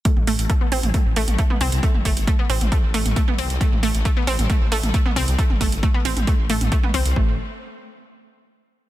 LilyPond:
<<
  \new Staff \with { instrumentName = "Synth arpeggio sound" } { \time 4/4 \key a \minor \tempo 4 = 135 a16 r16 a16 r16 a16 b16 c'16 r16 a16 r16 a16 r16 a16 b16 c'16 r16 | a16 r16 a16 r16 a16 b16 c'16 r16 a16 r16 a16 r16 a16 b16 c'16 r16 | a16 r16 a16 r16 a16 b16 c'16 r16 a16 r16 a16 r16 a16 b16 c'16 r16 | a16 r16 a16 r16 a16 b16 c'16 r16 a16 r16 a16 r16 a16 b16 c'16 r16 |
a8 r2. r8 | }
  \new Staff \with { instrumentName = "Detuned saw bass" } { \clef bass \time 4/4 \key a \minor r16 a,,16 a,,16 a,,16 r8 a,,16 a,,16 r16 a,,16 a,,16 a,,16 r8 c,16 c,16 | r16 g,,16 g,,16 g,,16 r8 a,,16 a,,16 r16 a,,16 a,,16 a,,16 r8 c,16 c,16 | r16 a,,16 a,,16 a,,16 r8 a,,16 a,,16 r16 a,,16 a,,16 a,,16 r8 c,16 c,16 | r16 g,,16 g,,16 g,,16 r8 a,,16 a,,16 r16 a,,16 a,,16 a,,16 r8 c,16 c,16 |
a,,8 r2. r8 | }
  \new DrumStaff \with { instrumentName = "Drums" } \drummode { \time 4/4 <hh bd>16 toml16 hho16 hh16 <hh bd>8 hho16 <hh toml>16 <hh bd toml>8 hho16 <hh toml>16 <hh bd>16 toml16 hho16 hh16 | <hh bd>16 toml16 <hho bd>16 hh16 <hh bd>8 hho16 <hh toml>16 <hh bd toml>8 hho16 <hh toml>16 <hh bd>16 toml16 hho16 hh16 | <hh bd>16 toml16 hho16 hh16 <hh bd>8 hho16 <hh toml>16 <hh bd toml>8 hho16 <hh toml>16 <hh bd>16 toml16 hho16 hh16 | <hh bd>16 toml16 <hho bd>16 hh16 <hh bd>8 hho16 <hh toml>16 <hh bd toml>8 hho16 <hh toml>16 <hh bd>16 toml16 hho16 hh16 |
bd4 r4 r4 r4 | }
>>